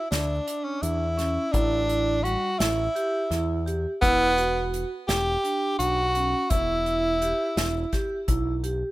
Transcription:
0.11 picked electric bass D2, tenor saxophone D4, snare, closed hi-hat
0.47 vibraphone D4, closed hi-hat
0.64 tenor saxophone C#4
0.82 picked electric bass E2, tenor saxophone E4, closed hi-hat
1.18 vibraphone C#4, snare, closed hi-hat
1.52 picked electric bass A1, tenor saxophone D4, vibraphone E4, kick, closed hi-hat
1.89 vibraphone E4, closed hi-hat
2.23 vibraphone G3, tenor saxophone F#4, closed hi-hat
2.59 picked electric bass A1, tenor saxophone E4, vibraphone E4, snare, closed hi-hat
2.95 vibraphone G4, closed hi-hat
3.31 picked electric bass E2, vibraphone E4, snare, closed hi-hat
3.66 vibraphone G4, closed hi-hat
4.01 picked electric bass E1, tenor saxophone B3, vibraphone E4, kick, closed hi-hat
4.37 vibraphone F#4, closed hi-hat
4.74 closed hi-hat
5.08 picked electric bass E1, tenor saxophone G4, snare, closed hi-hat
5.44 vibraphone D4, closed hi-hat
5.79 picked electric bass B1, tenor saxophone F#4, closed hi-hat
6.15 vibraphone C#4, closed hi-hat
6.50 picked electric bass E1, tenor saxophone E4, vibraphone E4, kick, closed hi-hat
6.86 vibraphone E4, closed hi-hat
7.22 vibraphone G4, closed hi-hat
7.57 picked electric bass E1, vibraphone E4, snare, closed hi-hat
7.93 vibraphone G4, kick, snare, closed hi-hat
8.28 picked electric bass B1, vibraphone E4, kick, closed hi-hat
8.64 vibraphone G4, closed hi-hat

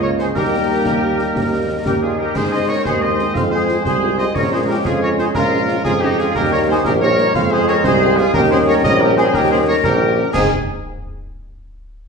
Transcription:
Already playing: tuba C#2, trombone section G#3 A#3, french horn section G#3 A#3 F4
0.02 flute section A#4, woodwind section C#5, cornet C#5
0.19 flute section G#4, woodwind section C5, cornet C5, snare
0.35 tuba D#2, trombone section G3 A#3, french horn section G3 A#3 D#4, flute section G4, cornet A#4, woodwind section A#4, concert bass drum, snare, crash
0.85 tuba D#2, concert bass drum, snare
1.19 snare
1.35 tuba D#2, concert bass drum, snare
1.85 tuba D#2, french horn section G3 A#3 D#4, flute section G4, woodwind section A#4, cornet A#4, concert bass drum, snare
2.01 flute section F4, woodwind section G#4, cornet G#4
2.18 flute section G4, woodwind section A#4, cornet A#4
2.35 tuba G#2, trombone section G#3 C4, flute section G#4, woodwind section C5, cornet C5, concert bass drum, snare, crash
2.51 french horn section G#3 C4 D#4, flute section C5, woodwind section D#5, cornet D#5
2.68 french horn section G#3 C4 D#4, flute section A#4, cornet C#5, woodwind section C#5
2.84 tuba D#2, flute section G#4, cornet C5, woodwind section C5, concert bass drum, snare
3.01 french horn section G#3 C4 D#4, flute section C5, cornet D#5, woodwind section D#5
3.19 french horn section G#3 C4 D#4, snare
3.35 tuba F2, flute section C5, cornet F5, woodwind section F5, concert bass drum, snare
3.51 french horn section G#3 C4 F4, flute section G#4, cornet C5, woodwind section C5
3.68 french horn section G#3 C4 F4, snare
3.84 tuba C2, flute section G#4, cornet C5, woodwind section C5, concert bass drum, snare
4.02 french horn section G#3 C4 F4
4.18 french horn section G#3 C4 F4, flute section C5, cornet D#5, woodwind section D#5, snare
4.34 tuba A#1, trombone section G#3 C#4, flute section A#4, woodwind section C#5, cornet C#5, concert bass drum, snare, crash
4.52 french horn section G#3 C#4 F4, flute section G#4, woodwind section C5, cornet C5
4.68 french horn section G#3 C#4 F4, flute section G4, cornet A#4, woodwind section A#4
4.84 tuba F2, flute section F4, cornet G#4, woodwind section G#4, concert bass drum, snare
5.01 french horn section G#3 C#4 F4, flute section A#4, woodwind section C#5, cornet C#5
5.18 french horn section G#3 C#4 F4, flute section G#4, cornet C5, woodwind section C5, snare
5.35 tuba A#1, flute section F4, cornet A#4, woodwind section A#4, concert bass drum, snare
5.52 french horn section G#3 C#4 F4
5.68 french horn section G#3 C#4 F4, snare
5.84 tuba F2, flute section F4, cornet G#4, woodwind section G#4, concert bass drum, snare
6.01 french horn section G#3 C#4 F4, flute section D#4, cornet G4, woodwind section G4
6.18 french horn section G#3 C#4 F4, flute section F4, woodwind section G#4, cornet G#4, snare
6.34 tuba D#2, trombone section G3 A#3, flute section G4, woodwind section A#4, cornet A#4, concert bass drum, snare, crash
6.52 french horn section G3 A#3 D#4, flute section A#4, woodwind section C#5, cornet C#5
6.68 french horn section G3 A#3 D#4, flute section G#4, woodwind section C5, cornet C5
6.85 tuba A#1, flute section G4, woodwind section A#4, cornet A#4, concert bass drum, snare
7.01 french horn section G3 A#3 D#4, flute section A#4, woodwind section C#5, cornet C#5
7.18 french horn section G3 A#3 D#4, snare
7.34 tuba F2, trombone section G#3 C4, flute section C5, woodwind section F5, cornet F5, concert bass drum, snare
7.51 french horn section F3 G#3 C4, flute section G#4, woodwind section C5, cornet C5
7.68 french horn section F3 G#3 C4, flute section A#4, cornet C#5, woodwind section C#5, snare
7.84 tuba C2, flute section G#4, cornet C5, woodwind section C5, concert bass drum, snare
8.01 french horn section F3 G#3 C4
8.17 french horn section F3 G#3 C4, flute section F4, cornet G#4, woodwind section G#4, snare
8.34 tuba D#2, trombone section G3 C#4, flute section G4, cornet A#4, woodwind section A#4, concert bass drum, snare, crash
8.50 french horn section G3 A#3 C#4, flute section G#4, cornet C5, woodwind section C5
8.67 french horn section G3 A#3 C#4, flute section A#4, cornet C#5, woodwind section C#5
8.84 tuba A#1, flute section A#4, cornet D#5, woodwind section D#5, concert bass drum, snare
9.01 french horn section G3 A#3 C#4, flute section G4, woodwind section A#4, cornet A#4
9.17 french horn section G3 A#3 C#4, flute section G#4, cornet C5, woodwind section C5, snare
9.34 tuba D#2, flute section G4, cornet A#4, woodwind section A#4, concert bass drum, snare
9.50 french horn section G3 A#3 C#4, flute section G#4, woodwind section C5, cornet C5
9.68 french horn section G3 A#3 C#4, flute section A#4, woodwind section C#5, cornet C#5
9.84 tuba A#1, flute section G4, cornet A#4, woodwind section A#4, concert bass drum, snare
10.01 french horn section G3 A#3 C#4
10.17 french horn section G3 A#3 C#4
10.33 tuba G#2, french horn section G#3 C4 D#4, trombone section G#3 C4, cornet G#4, woodwind section G#4, flute section G#5, concert bass drum, snare, crash

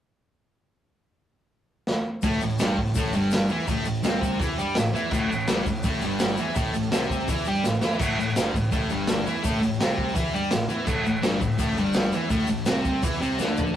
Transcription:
1.87 snare
2.22 picked electric bass A1, distorted electric guitar A2 A3, kick, open hi-hat, shaker
2.41 picked electric bass A1, distorted electric guitar A2, shaker
2.50 shaker
2.59 picked electric bass G1, distorted electric guitar G2 G3, snare, open hi-hat, shaker
2.77 picked electric bass A1, distorted electric guitar A2, kick
2.86 shaker
2.95 picked electric bass A1, distorted electric guitar A2 A3, kick, open hi-hat, shaker
3.13 picked electric bass G1, distorted electric guitar G2 G3, shaker
3.22 shaker
3.31 snare, open hi-hat, shaker
3.48 picked electric bass E2, distorted electric guitar E3 E4, shaker
3.67 picked electric bass A1, distorted electric guitar A2 A3, kick, open hi-hat, shaker
3.85 picked electric bass A1, distorted electric guitar A2, shaker
3.95 shaker
4.03 picked electric bass C2, distorted electric guitar C3 C4, snare, open hi-hat, shaker
4.22 kick, shaker
4.39 picked electric bass E2, distorted electric guitar E3 E4, kick, open hi-hat, shaker
4.57 picked electric bass G2, distorted electric guitar G3 G4, shaker
4.69 shaker
4.75 picked electric bass A1, distorted electric guitar A2, snare, open hi-hat, shaker
4.94 picked electric bass E2, distorted electric guitar E3 E4, shaker
5.11 picked electric bass A1, distorted electric guitar A2 A3, kick, crash, shaker
5.29 picked electric bass A1, distorted electric guitar A2, shaker
5.48 picked electric bass G1, distorted electric guitar G2 G3, snare, open hi-hat, shaker
5.66 picked electric bass A1, distorted electric guitar A2, kick, shaker
5.75 shaker
5.83 picked electric bass A1, distorted electric guitar A2 A3, kick, open hi-hat, shaker
6.01 picked electric bass G1, distorted electric guitar G2 G3, shaker
6.11 shaker
6.19 snare, open hi-hat, shaker
6.29 shaker
6.37 picked electric bass E2, distorted electric guitar E3 E4, shaker
6.55 picked electric bass A1, distorted electric guitar A2 A3, kick, open hi-hat, shaker
6.74 picked electric bass A1, distorted electric guitar A2, shaker
6.83 shaker
6.92 picked electric bass C2, distorted electric guitar C3 C4, snare, open hi-hat, shaker
7.03 shaker
7.10 kick, shaker
7.20 shaker
7.28 picked electric bass E2, distorted electric guitar E3 E4, kick, open hi-hat, shaker
7.38 shaker
7.45 picked electric bass G2, distorted electric guitar G3 G4, shaker
7.55 shaker
7.64 picked electric bass A1, distorted electric guitar A2, snare, shaker
7.81 picked electric bass E2, distorted electric guitar E3 E4, snare, shaker
7.92 shaker
7.99 picked electric bass A1, distorted electric guitar A2 A3, kick, open hi-hat, crash, shaker
8.18 picked electric bass A1, distorted electric guitar A2, shaker
8.29 shaker
8.35 picked electric bass G1, distorted electric guitar G2 G3, snare, open hi-hat, shaker
8.54 picked electric bass A1, distorted electric guitar A2, kick, shaker
8.71 picked electric bass A1, distorted electric guitar A2 A3, kick, open hi-hat, shaker
8.90 picked electric bass G1, distorted electric guitar G2 G3, shaker
9.07 snare, open hi-hat, shaker
9.26 picked electric bass E2, distorted electric guitar E3 E4, shaker
9.43 picked electric bass A1, distorted electric guitar A2 A3, kick, open hi-hat, shaker
9.62 picked electric bass A1, distorted electric guitar A2, shaker
9.73 shaker
9.80 picked electric bass C2, distorted electric guitar C3 C4, snare, open hi-hat, shaker
9.98 kick
10.09 shaker
10.15 picked electric bass E2, distorted electric guitar E3 E4, kick, open hi-hat, shaker
10.33 picked electric bass G2, distorted electric guitar G3 G4, shaker
10.43 shaker
10.51 picked electric bass A1, distorted electric guitar A2, snare, open hi-hat, shaker
10.69 picked electric bass E2, distorted electric guitar E3 E4, shaker
10.86 picked electric bass A1, distorted electric guitar A2 A3, kick, crash, shaker
11.05 picked electric bass A1, distorted electric guitar A2, shaker
11.16 shaker
11.22 picked electric bass G1, distorted electric guitar G2 G3, snare, open hi-hat, shaker
11.41 picked electric bass A1, distorted electric guitar A2, kick, shaker
11.51 shaker
11.58 picked electric bass A1, distorted electric guitar A2 A3, kick, open hi-hat, shaker
11.75 picked electric bass G1, distorted electric guitar G2 G3, shaker
11.86 shaker
11.93 snare, open hi-hat, shaker
12.03 shaker
12.12 picked electric bass E2, distorted electric guitar E3 E4, shaker
12.29 picked electric bass A1, distorted electric guitar A2 A3, kick, open hi-hat, shaker
12.39 shaker
12.47 picked electric bass A1, distorted electric guitar A2, shaker
12.66 picked electric bass C2, distorted electric guitar C3 C4, snare, open hi-hat, shaker
12.84 kick, shaker
13.03 picked electric bass E2, distorted electric guitar E3 E4, kick, open hi-hat, shaker
13.13 shaker
13.20 picked electric bass C2, distorted electric guitar C3 C4, shaker
13.39 picked electric bass D2, distorted electric guitar D3 D4, snare, shaker
13.57 floor tom, shaker

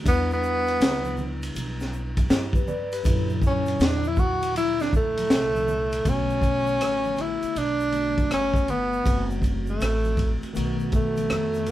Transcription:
0.04 upright bass E2, tine electric piano G3 B3 D4 E4, tenor saxophone B3, kick, ride, shaker
0.30 tenor saxophone B3, shaker
0.43 shaker
0.67 ride, shaker
0.81 upright bass C#2, snare, hi-hat pedal, ride, shaker
1.04 high conga, shaker
1.17 high conga, low conga, shaker
1.42 ride, shaker
1.55 upright bass B1, ride, high conga, shaker
1.80 snare, shaker
1.93 shaker
2.17 kick, ride, high conga, shaker
2.30 upright bass G2, tine electric piano E4 G4, snare, hi-hat pedal, ride, shaker
2.53 tine electric piano G4 B4, kick, high conga, shaker
2.68 tine electric piano B4 D5, low conga, shaker
2.92 tine electric piano G4 B4, ride, shaker
3.04 upright bass F#2, tine electric piano A#2 D3 F#3 E4, kick, ride, shaker
3.29 shaker
3.42 kick, shaker
3.47 tenor saxophone C#4
3.66 ride, shaker
3.80 upright bass E2, tenor saxophone D4, snare, hi-hat pedal, ride, shaker
4.04 tenor saxophone E4, high conga, shaker
4.17 tenor saxophone F#4, kick, high conga, low conga, shaker
4.42 ride, shaker
4.55 upright bass D2, tenor saxophone E4, ride, high conga, shaker
4.80 tenor saxophone D4, snare, shaker
4.93 tenor saxophone A3, kick, shaker
5.17 ride, high conga, shaker
5.30 upright bass C2, snare, hi-hat pedal, ride, shaker
5.55 high conga, shaker
5.68 low conga, shaker
5.92 ride, shaker
6.04 upright bass B1, tine electric piano D3 A3 B3 F#4, kick, ride, shaker
6.09 tenor saxophone C#4
6.30 shaker
6.42 kick, ride, shaker
6.66 shaker
6.80 upright bass A1, cross-stick, hi-hat pedal, ride, shaker
7.05 high conga, shaker
7.17 tenor saxophone E4, ride, high conga, low conga, shaker
7.43 muted upright bass stroke, ride, shaker
7.56 upright bass B1, tenor saxophone D4, ride, shaker
7.80 shaker
7.92 tine electric piano D3 A3 B3 F#4, ride, shaker
8.18 kick, ride, high conga, shaker
8.30 upright bass G1, tenor saxophone C#4, cross-stick, hi-hat pedal, ride, shaker
8.54 kick, cross-stick, shaker
8.68 tenor saxophone B3, ride, low conga, shaker
8.93 shaker
9.03 upright bass F#1, tine electric piano E3 A3 C4 F#4, kick, ride, shaker
9.30 shaker
9.42 kick, ride, shaker
9.66 tenor saxophone A3, shaker
9.80 upright bass A1, cross-stick, hi-hat pedal, ride, shaker
10.04 high conga, shaker
10.17 kick, ride, high conga, low conga, shaker
10.42 muted upright bass stroke, ride, shaker
10.53 upright bass B1, tine electric piano D#3 A3 B3 F#4, ride, shaker
10.79 shaker
10.92 tenor saxophone A3, kick, ride, shaker
11.17 ride, high conga, shaker
11.30 upright bass F2, cross-stick, hi-hat pedal, ride, shaker
11.54 cross-stick, shaker
11.66 ride, low conga, shaker

